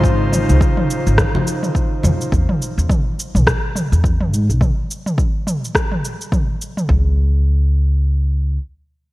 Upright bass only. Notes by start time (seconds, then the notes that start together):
Already playing: G#1
0.49 C#2
1.07 G#1
2.04 F2
2.32 E2
2.78 E2
3.35 B1
3.92 E2
4.33 G#2
4.49 B1
6.89 C#2